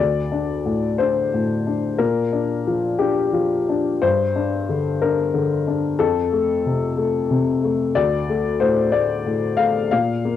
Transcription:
Already playing: D5
0.00 D2
0.32 D4
0.66 A2
0.98 D4 C5
1.34 A2
1.67 D4
1.98 A#2 A#4
2.32 D4
2.67 F3
2.99 D4 G4
3.33 F3
3.69 D4
4.02 G2 C5
4.36 D4
4.69 D3
5.02 D4 A#4
5.34 D3
5.67 D4
5.99 F2 A4
6.32 A3
6.66 C3
6.97 A3
7.31 C3
7.63 A3
7.95 D2 D5
8.29 A3
8.60 A2 C5
8.92 A3 D5
9.26 A2
9.57 A3 F5
9.91 A#2 F5
10.25 A#3

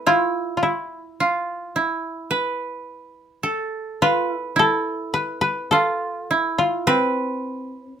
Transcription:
Already playing: A3 B3 C4 E4 A4 B4
0.07 E4 F4
0.57 F4
0.63 E4
1.20 F4
1.76 E4
2.31 B4
3.43 A4
4.02 F4 B4
4.33 E4
4.56 E4 A4
5.14 B4
5.41 B4
5.71 F4 A4
6.31 E4
6.58 F4
6.87 C4 B4
7.77 C#4

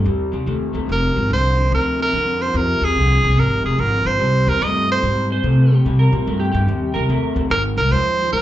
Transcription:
0.04 D#2 C3 G3
0.32 C2 C3 G3
0.46 D#2 C3 A3
0.73 D#2 C3 A3
0.86 F1 F2 C3
0.92 A#4
1.14 G#1 F2 C3
1.28 C2 F2 D3
1.33 C5
1.55 F2 D3
1.70 D2 F2 C3
1.74 A#4
1.97 F2 C3
2.02 A#4
2.12 F2 D3
2.40 F2 D3 C5
2.54 F2 C3 A#4
2.81 D#2 F2 C3 G#4
2.95 C2 F2 D3
3.22 C2 F2 D3
3.36 G#1 F2 C3 A#4
3.63 F1 F2 C3 G#4
3.77 G#1 F2 D3 A#4
4.05 G#1 F2 D3 C5
4.19 C2 C3 G3
4.46 D#2 C3 G3 A#4
4.61 G2 C3 A3 D#5
4.88 C3 A3 C5
5.03 G#2 C3 G3
5.29 C3 G3 C5
5.43 C3 A3
5.71 C3 A3 G4
5.85 C3 G3
5.99 A#4
6.12 A#2 C3 G3
6.27 G2 C3 A3
6.40 G4
6.52 G2 C3 A3 G4
6.68 D#2 C3 G3
6.94 C2 C3 G3 A#4
7.08 D#2 C3 A3
7.35 D#2 C3 A3
7.50 G#1 G#2 D#3 A#4
7.76 C2 G#2 D#3 A#4
7.91 D#2 G#2 F3 C5
8.18 G#2 F3
8.32 F2 G#2 D#3 A#4

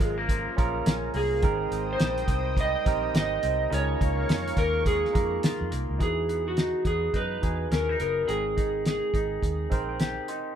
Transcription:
Already playing: F#2 F3 C#4 F4 G#4 A#4 F5 A#5
0.00 G#1 G#3 G#4, kick, closed hi-hat
0.18 A#3
0.29 F3, kick, closed hi-hat
0.57 A#1 A#3 C#4 F4 G#4 A#4, kick, closed hi-hat
0.86 A#1 C#4, snare, closed hi-hat
1.14 C2 A#3 G#4, open hi-hat
1.42 G#1 G#2 C4 D#4 A#4 C5 D#5 G5 D#6, kick, closed hi-hat
1.71 G#1 C4, closed hi-hat
1.93 C5
2.00 A#1 G3, snare, closed hi-hat
2.18 closed hi-hat
2.28 C2 C4, kick, closed hi-hat
2.57 G3 D#5, kick, closed hi-hat
2.85 A#1 C4 D#4 G4 A#4, kick, closed hi-hat
3.14 G#1 D#4 D#5, snare, closed hi-hat
3.42 C2 C4, closed hi-hat
3.70 C#2 C#3 D#4 F4 G#4 A#4 C#5 F5 C#6, closed hi-hat
4.01 C#2 A#3, kick, closed hi-hat
4.29 F2 G#3, snare, closed hi-hat
4.48 closed hi-hat
4.57 D#2 A#3 A#4, kick, closed hi-hat
4.86 G#3 G#4, kick, closed hi-hat
5.05 snare
5.13 F2 A#3 D#4 F4 G#4 A#4, kick, closed hi-hat
5.43 F4, snare, closed hi-hat
5.61 F2
5.71 C2 A#3, closed hi-hat
5.90 C#2
5.98 E2 E3 D#4 F#4 G#4 B4, kick, closed hi-hat
6.03 G#4
6.29 B3, closed hi-hat
6.48 F#4
6.57 D#4, snare, closed hi-hat
6.85 E2 B3 G#4, kick, closed hi-hat
7.14 F#2 D#4 B4, kick, closed hi-hat
7.41 E2 D#4 F#4 G#4 B4, kick, closed hi-hat
7.71 D#2 C#4 A#4, snare, closed hi-hat
7.89 D#4
8.00 F#1 B3 A#4, closed hi-hat
8.27 G#1 G#3 C4 D#4 G#4 A#4 G5, closed hi-hat
8.57 D#4, kick, closed hi-hat
8.86 G#4, snare, closed hi-hat
9.14 G#1 D#4, kick, closed hi-hat
9.43 D#2, kick, closed hi-hat
9.70 A#1 C4 D#4 A#4 C5 D#5 G5, kick, closed hi-hat
9.89 G5
10.00 G4 G#5, snare, closed hi-hat
10.28 D#4 C6, closed hi-hat

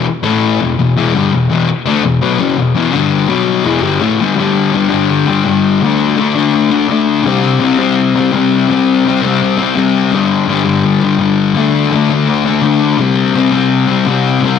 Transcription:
0.05 muted distorted electric guitar stroke
0.23 A2 E3 A3
0.60 E2 B2
0.79 E2 B2
0.97 E2 B2 E3
1.15 G2 D3 G3
1.32 E2 B2
1.50 E2 B2 E3
1.68 muted distorted electric guitar stroke
1.85 D3 A3 D4
2.04 E2 B2
2.22 B2 F#3 B3
2.39 F#2 C#3 F#3
2.57 E2 B2
2.75 E2 B2 E3
2.93 G2 D3 G3
3.28 B2 F#3 B3
3.64 E2 B2 E3
3.82 G2 D3 G3
4.01 A2 E3 A3
4.20 G2 D3 G3
4.36 G2 D3
4.40 G3
4.73 G2 D3 G3
4.90 G3
4.94 D3
5.27 D3 G3
5.45 G2 D3 G3
5.82 D3 A3 D4
6.17 D3 A3 D4
6.35 A3 D4
6.71 A3 D4
6.88 D3 A3 D4
7.23 C3 G3
7.27 C4
7.60 C3 G3 C4
7.79 G3 C4
8.16 G3 C4
8.32 C3 G3 C4
8.68 C3 G3 C4
9.05 C3 G3
9.09 C4
9.22 G3 C4
9.58 C4
9.62 G3
9.75 C3 G3 C4
10.11 G2 D3 G3
10.46 G2 D3
10.51 G3
10.65 D3 G3
11.00 G3
11.04 D3
11.17 G2 D3
11.21 G3
11.54 D3 A3 D4
11.92 D3 A3 D4
12.10 A3 D4
12.45 A3 D4
12.62 D3 A3
12.66 D4
12.98 C3 G3 C4
13.34 C3 G3 C4
13.52 C4
13.56 G3
13.87 G3 C4
14.06 C3 G3 C4
14.41 C3 G3
14.46 C4

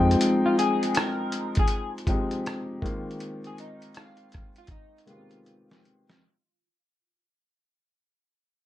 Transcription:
Already playing: F2 F3 G#3 C4 D#4 G5
0.11 closed hi-hat
0.21 closed hi-hat
0.46 F4
0.59 G#4, closed hi-hat
0.83 closed hi-hat
0.95 A#4, cross-stick, closed hi-hat
1.32 closed hi-hat
1.55 kick, closed hi-hat
1.59 G#4
1.68 closed hi-hat
1.98 closed hi-hat
2.07 F3 G#3 C4 D#4 G4, kick, closed hi-hat
2.31 closed hi-hat
2.46 cross-stick, closed hi-hat
2.82 D#3 G#3 A#3 C4 F4, kick, closed hi-hat
3.11 closed hi-hat
3.20 closed hi-hat
3.44 G#4, closed hi-hat
3.58 D#4, closed hi-hat
3.82 closed hi-hat
3.94 F4, cross-stick, closed hi-hat
4.17 closed hi-hat
4.32 kick, cross-stick, closed hi-hat
4.56 F4, closed hi-hat
4.67 D#4, kick, closed hi-hat
4.98 closed hi-hat
5.06 D#3 G#3 A#3 B3 G4, closed hi-hat
5.10 F4
5.14 C4
5.31 closed hi-hat
5.46 closed hi-hat
5.71 snare
5.85 closed hi-hat
6.09 snare, closed hi-hat

